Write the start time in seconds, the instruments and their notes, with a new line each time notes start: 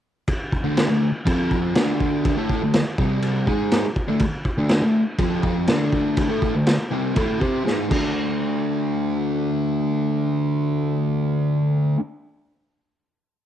0.28 kick, crash
0.52 kick
0.64 distorted electric guitar D3 A3 D4
0.77 snare, crash
0.89 distorted electric guitar D3 A3
1.25 distorted electric guitar F3 C4 F4, kick, crash
1.51 kick
1.75 distorted electric guitar D3 A3 D4, snare, crash
2.00 kick
2.25 kick, crash
2.36 distorted electric guitar A3 E4 A4
2.49 kick
2.62 distorted electric guitar D3 A3
2.74 snare, crash
2.98 distorted electric guitar C3 G3 C4, kick
3.22 crash
3.47 distorted electric guitar G#3 D#4 G#4, kick
3.71 snare, crash
3.84 muted distorted electric guitar stroke
3.96 kick
4.08 distorted electric guitar D3 A3
4.19 kick, crash
4.45 kick
4.58 distorted electric guitar D3 A3 D4
4.69 snare, crash
4.82 distorted electric guitar D3 A3
5.19 distorted electric guitar F3 C4 F4, kick, crash
5.43 kick
5.67 distorted electric guitar D3 A3 D4, snare, crash
5.93 kick
6.17 kick, crash
6.29 distorted electric guitar A3 E4 A4
6.42 kick
6.54 distorted electric guitar D3 A3
6.67 snare, crash
6.91 distorted electric guitar C3 G3 C4
7.15 distorted electric guitar A3 E4 A4, kick, crash
7.40 distorted electric guitar C4 G4 C5, kick
7.64 distorted electric guitar G#3 D#4 G#4, snare
7.89 distorted electric guitar D3 A3, kick, crash
7.94 distorted electric guitar D4